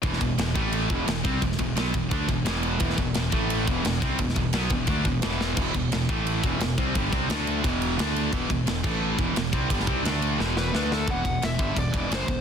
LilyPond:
<<
  \new Staff \with { instrumentName = "Lead electric guitar" } { \time 4/4 \key e \minor \tempo 4 = 174 r1 | r1 | r1 | r1 |
r1 | r1 | r1 | r2 r8 b'4 a'8 |
fis''4 e''4 d''4 c''4 | }
  \new Staff \with { instrumentName = "Distorted electric guitar" } { \clef bass \time 4/4 \key e \minor <e, b, e>8 <e, b,>8 <e, b,>8 <a, e a>4 <e, b, e>8 <e, b,>8 <c g c'>8 | <e, b,>8 <e, b,>8 <b, fis b>8 <e, b,>8 <d a d'>8 <e, b,>8 <e, b, e>4 | <e, b, e>8 <e, b,>8 <e, b,>8 <a, e a>4 <e, b, e>8 <e, b,>8 <c g c'>8 | <e, b,>8 <e, b,>8 <b, fis b>8 <e, b,>8 <d a d'>8 <e, b,>8 <e, b, e>4 |
<e, b, e>8 <e, b,>8 <e, b,>8 <a, e a>4 <e, b, e>8 <e, b,>8 <c g c'>8 | <g, d g>8 <c g c'>8 <d a d'>4 <e, b, e>4 <d a d'>4 | <e, b, e>8 <e, b,>8 <e, b,>8 <a, e a>4 <e, b, e>8 <e, b,>8 <c g c'>8 | <g, d g>8 <c g c'>8 <d a d'>4 <e, b, e>4 <d a d'>4 |
<e, b, e>8 <e, b,>8 <e, b,>8 <g, d g>8 <e, b,>8 <e, b, e>8 <fis, cis fis>8 <e, b,>8 | }
  \new Staff \with { instrumentName = "Distorted electric guitar" } { \clef bass \time 4/4 \key e \minor <e, b, e>8 <e, b,>8 <e, b,>8 <a, e a>4 <e, b, e>8 <e, b,>8 <c g c'>8 | <e, b,>8 <e, b,>8 <b, fis b>8 <e, b,>8 <d a d'>8 <e, b,>8 <e, b, e>4 | <e, b, e>8 <e, b,>8 <e, b,>8 <a, e a>4 <e, b, e>8 <e, b,>8 <c g c'>8 | <e, b,>8 <e, b,>8 <b, fis b>8 <e, b,>8 <d a d'>8 <e, b,>8 <e, b, e>4 |
<e, b, e>8 <e, b,>8 <e, b,>8 <a, e a>4 <e, b, e>8 <e, b,>8 <c g c'>8 | <g, d g>8 <c g c'>8 <d a d'>4 <e, b, e>4 <d a d'>4 | <e, b, e>8 <e, b,>8 <e, b,>8 <a, e a>4 <e, b, e>8 <e, b,>8 <c g c'>8 | <g, d g>8 <c g c'>8 <d a d'>4 <e, b, e>4 <d a d'>4 |
<e, b, e>8 <e, b,>8 <e, b,>8 <g, d g>8 <e, b,>8 <e, b, e>8 <fis, cis fis>8 <e, b,>8 | }
  \new Staff \with { instrumentName = "Distorted electric guitar" } { \clef bass \time 4/4 \key e \minor <e, b, e>8 <e, b,>8 <e, b,>8 <a, e a>4 <e, b, e>8 <e, b,>8 <c g c'>8 | <e, b,>8 <e, b,>8 <b, fis b>8 <e, b,>8 <d a d'>8 <e, b,>8 <e, b, e>4 | <e, b, e>8 <e, b,>8 <e, b,>8 <a, e a>4 <e, b, e>8 <e, b,>8 <c g c'>8 | <e, b,>8 <e, b,>8 <b, fis b>8 <e, b,>8 <d a d'>8 <e, b,>8 <e, b, e>4 |
<e, b, e>8 <e, b,>8 <e, b,>8 <a, e a>4 <e, b, e>8 <e, b,>8 <c g c'>8 | <g, d g>8 <c g c'>8 <d a d'>4 <e, b, e>4 <d a d'>4 | <e, b, e>8 <e, b,>8 <e, b,>8 <a, e a>4 <e, b, e>8 <e, b,>8 <c g c'>8 | <g, d g>8 <c g c'>8 <d a d'>4 <e, b, e>4 <d a d'>4 |
r1 | }
  \new Staff \with { instrumentName = "Fingered electric bass" } { \clef bass \time 4/4 \key e \minor e,,8 e,,8 e,,8 a,,4 e,,8 e,,8 c,8 | e,,8 e,,8 b,,8 e,,8 d,8 e,,8 e,,4 | e,,8 e,,8 e,,8 a,,4 e,,8 e,,8 c,8 | e,,8 e,,8 b,,8 e,,8 d,8 e,,8 e,,4 |
e,,8 e,,8 e,,8 a,,4 e,,8 e,,8 c,8 | g,,8 c,8 d,4 e,,4 d,4 | e,,8 e,,8 e,,8 a,,4 e,,8 e,,8 c,8 | g,,8 c,8 d,4 e,,4 d,4 |
e,,8 e,,8 e,,8 g,,8 e,,8 e,,8 fis,,8 e,,8 | }
  \new DrumStaff \with { instrumentName = "Drums" } \drummode { \time 4/4 <bd cymr>16 sn16 <bd cymr>8 <cymr sn>8 <bd cymr>8 cymr8 <bd cymr>8 <cymr sn>8 <bd cymr>8 | <bd cymr>16 sn16 <bd cymr>8 <cymr sn>8 <bd cymr>8 <bd cymr>8 <bd cymr>8 <cymr sn>8 cymr8 | <bd cymr>16 sn16 <bd cymr>8 <cymr sn>8 <bd cymr>8 cymr8 <bd cymr>8 <cymr sn>8 <bd cymr>8 | <bd cymr>16 sn16 <bd cymr>8 <cymr sn>8 <bd cymr>8 <bd cymr>8 <bd cymr>8 <cymr sn>8 sn8 |
<cymc bd cymr>8 <bd cymr>8 <cymr sn>8 <bd cymr>8 cymr8 <bd cymr>8 <cymr sn>8 <bd cymr>8 | <bd cymr>8 <bd cymr>8 <cymr sn>8 cymr8 <bd cymr>8 cymr8 <cymr sn>8 cymr8 | <bd cymr>8 <bd cymr>8 <cymr sn>8 <cymc bd>8 r8 <bd cymr>8 <cymr sn>8 <bd cymr>8 | <bd cymr>16 sn16 <bd cymr>8 <cymr sn>8 cymr8 sn8 sn8 sn8 sn8 |
<bd cymr>8 <bd cymr>8 <cymr sn>8 <bd cymr>8 <bd cymr>8 <bd cymr>8 <cymr sn>8 <bd cymr>8 | }
>>